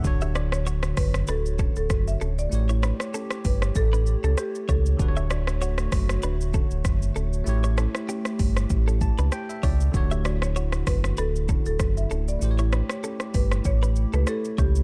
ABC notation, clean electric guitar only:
X:1
M:4/4
L:1/16
Q:"Swing 16ths" 1/4=97
K:D
V:1 name="Clean electric guitar"
z [Ge] [Fd] z [Fc]2 z2 [DB] z [CA] z3 [CA] z | z [Ec] [DB] z [CA]2 z3 [DB] z [CA] z2 [Ec] z | z [Ge] [Fd] z [Fc]2 z2 [DB] z [CA] z3 [CA] z | z [Ec] [CA] z [CG]2 z3 [CA] z [DB] z2 [Ec] z |
z [Ge] [Fd] z [Fc]2 z2 [DB] z [CA] z3 [CA] z | z [Ec] [DB] z [CA]2 z3 [DB] z [CA] z2 [Ec] z |]